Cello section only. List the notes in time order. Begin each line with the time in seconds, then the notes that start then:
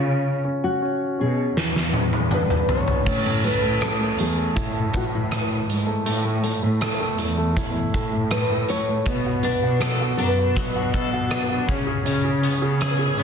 Already playing: C#3
1.19 B2
1.56 E2
3.06 A2
3.62 A2
4.19 E2
4.56 A2
5.69 G#2
6.07 A2
6.63 A2
7.20 E2
7.94 A2
9.07 B2
9.63 B2
10.19 F#2
10.56 B2
11.69 C#3
12.05 C#3
12.62 C#3
13.18 G#2